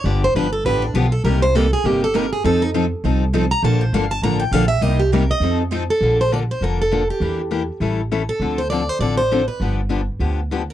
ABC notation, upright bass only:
X:1
M:4/4
L:1/8
Q:"Swing" 1/4=201
K:Bb
V:1 name="Upright bass" clef=bass
G,,,2 G,,,2 A,,,2 =B,,,2 | C,,4 G,,,4 | F,,4 C,,4 | B,,,2 G,,,2 A,,,2 B,,,2 |
C,,4 F,,4 | B,,,4 F,,,4 | =E,,4 A,,,4 | D,,4 A,,,4 |
G,,,4 D,,4 |]